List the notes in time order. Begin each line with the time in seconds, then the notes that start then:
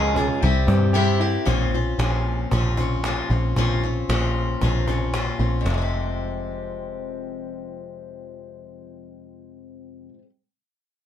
Already playing: C#2 C#3 F3 G#3 F4 G#4
0.14 C#4 F4 G#4, cajon bass
0.19 G#3
0.41 C2 C3 G3 C4 E4 G4
0.67 G2 C4, cajon bass
0.93 C3 G3 C4 E4 G4
1.20 C4 E4 G4
1.45 A#1 A#2 F3 C4 C#4 F4, cajon bass
1.74 C4 C#4 F4
1.98 A#1 A#2 F3 C4 C#4 F4, cajon slap
2.51 A#1 F3 C4 C#4 F4, cajon bass
2.77 C4 C#4 F4, cajon bass
3.04 A#2 F3 C4 C#4 F4, cajon slap
3.30 A#1 C4 C#4 F4
3.56 A#1 A#2 F3 C4 C#4 F4, cajon bass
3.83 C4 C#4 F4
4.09 A#1 A#2 F3 C4 C#4 F4, cajon slap
4.61 A#1 F3 C4 C#4 F4, cajon bass
4.87 C4 C#4 F4, cajon bass
5.13 A#2 F3 C4 C#4 F4, cajon slap
5.39 A#1 C4 C#4 F4
5.61 F2
5.65 F1 C3, cajon slap
5.70 F3 G#3
5.78 C4 G4